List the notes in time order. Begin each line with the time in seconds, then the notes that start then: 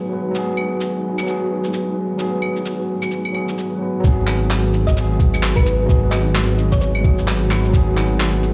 Already playing: F#3 G#3 B3 D#4 F#4 G#4 B4
0.09 F#3 B3 B4
0.31 F#3 B3
0.35 G#4, shaker
0.57 claves
0.80 shaker
1.18 claves, shaker
1.23 F#3 B3
1.27 G#4, shaker
1.64 shaker
1.73 shaker
2.18 F#3 B3 G#4, shaker
2.42 claves
2.56 shaker
2.65 shaker
3.02 claves, shaker
3.11 shaker
3.25 claves
3.32 F#3 B3, claves
3.36 G#4
3.48 shaker
3.58 shaker
3.79 F#3 B3 B4
4.00 F#3
4.04 G#1 G#3 B3 D#4 F#4 G#4 B4, kick, shaker
4.27 clap, cabasa, claves
4.50 clap, shaker
4.74 cabasa
4.87 D#5, kick, shaker
4.93 F#3
4.97 B3 G#4, shaker
5.20 kick, cabasa
5.34 claves, shaker
5.43 clap, shaker
5.56 B4, kick, claves
5.66 cabasa
5.86 F#3 B3, kick, shaker
5.90 G#4
6.11 D#5, clap, cabasa, claves
6.35 clap, shaker
6.58 cabasa
6.72 C#5, kick, shaker
6.81 C#5, shaker
6.95 claves
7.02 F#3 B3 G#4, kick, cabasa
7.18 shaker
7.28 clap, shaker
7.48 F#3 B3 B4, clap, cabasa, claves
7.65 shaker
7.69 F#3 B3 F4
7.74 G#4, kick, shaker
7.97 clap, cabasa, claves
8.20 clap, shaker
8.43 cabasa